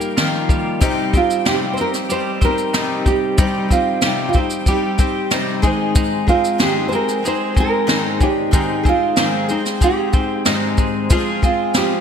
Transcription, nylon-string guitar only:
Already playing: G4
1.17 F4
1.48 G4
1.74 C5
1.81 A#4
2.11 C5
2.45 A#4
3.08 G4
3.72 F4
4.29 F4
4.38 D#4
4.68 G4
6.29 F4
6.62 G4
6.88 C5
6.95 A#4
7.27 C5
7.60 A#4
8.09 G#4
8.23 G4
8.89 F4
9.52 D#4
9.84 G4
11.44 F4
11.77 G4

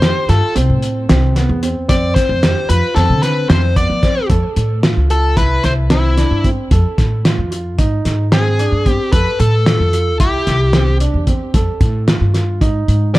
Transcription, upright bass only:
Already playing: F2
0.29 G2
0.56 C2
0.70 A2
1.10 C2
1.49 E2
1.89 F2
2.29 F2
2.70 F2
2.96 F2
3.10 D3
3.50 F2
3.90 F3
4.30 F2
4.57 A2
4.97 C#2
5.37 C2
5.64 C2
6.31 G2
6.71 F2
6.98 A2
7.38 F2
7.79 G#2
8.06 G#2
8.72 G2
9.13 F2
9.40 A2
9.80 F2
10.20 C2
10.47 C2
11.14 E2
11.54 F2
11.81 A2
12.21 G2
12.61 G#2
12.88 G#2

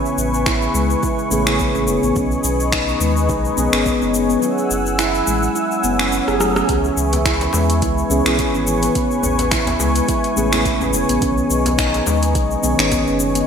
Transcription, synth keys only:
Already playing: C#3 B3 G#4
1.31 C#3 A3 B3 G#4
1.46 C#3 B3 G#4
2.15 D#3 B3 C#4 G#4
3.57 D#3 B3 C#4 G#4
3.72 D#3 B3 C#4 G#4
4.41 F#3 E4
4.45 G#4
6.39 F#3 A3 E4 G#4
6.67 E3 B3 C#4 G#4
8.09 E3 B3 C#4 G#4
8.24 E3 B3 C#4 G#4
8.93 C#3 B3
8.98 G#4
10.36 C#3 A3 B3 G#4
10.51 C#3 B3
10.55 G#4
11.20 D#3 B3 C#4
11.24 G#4
12.63 D#3 B3 C#4 G#4
12.77 D#3 B3 C#4 G#4

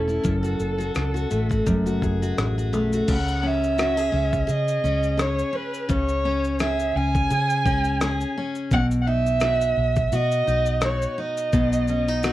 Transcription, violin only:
Already playing: A4
3.13 F#5
3.47 E5
4.51 D#5
5.20 C#5
5.55 B4
5.91 C#5
6.61 E5
6.96 G#5
8.73 F#5
9.01 F#5
9.07 E5
10.14 D#5
10.84 C#5
11.20 D#5

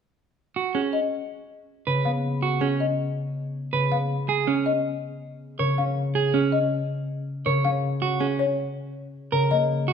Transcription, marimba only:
0.75 G#4
0.93 D#5
2.05 F5
2.61 G#4
2.80 D#5
3.92 F5
4.47 G#4
4.66 D#5
5.59 A#4
5.78 F5
6.34 G#4
6.52 D#5
7.46 A#4
7.65 F5
8.20 G#4
8.39 C#5
9.32 A#4
9.51 D#5

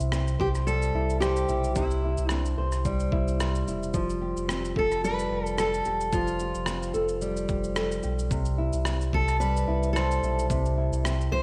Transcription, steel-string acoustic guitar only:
0.40 G4
0.67 A4
1.20 G4
1.75 E4
2.32 D4
4.79 A4
5.04 B4
5.60 A4
6.13 F4
9.14 A4
9.40 B4
9.93 A4
11.32 C5

